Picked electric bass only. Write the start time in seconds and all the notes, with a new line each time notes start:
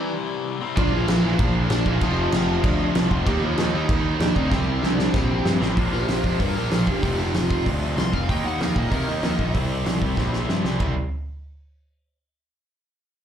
0.78 A#1
0.92 A#1
1.08 A#1
1.24 A#1
1.39 A#1
1.70 A#1
1.86 A#1
2.02 F1
2.33 F1
2.64 D2
2.96 C2
3.11 F1
3.27 D#2
3.41 D#2
3.58 D#2
3.73 D#2
3.89 D#2
4.20 D#2
4.36 D2
4.51 C2
4.83 C2
5.14 A#1
5.45 G2
5.61 A1
5.77 A#1
5.93 A#1
6.08 A#1
6.25 F2
6.40 G2
6.56 A#1
6.71 A#1
6.88 E1
7.03 F1
7.35 F1
7.66 D2
7.97 C2
8.13 F1
8.29 D#2
8.44 D#2
8.61 D#2
8.76 A#2
8.91 C3
9.08 D#2
9.23 D#2
9.39 A#1
9.55 C2
9.87 C2
10.17 A#1
10.48 G2
10.64 C2
10.80 C2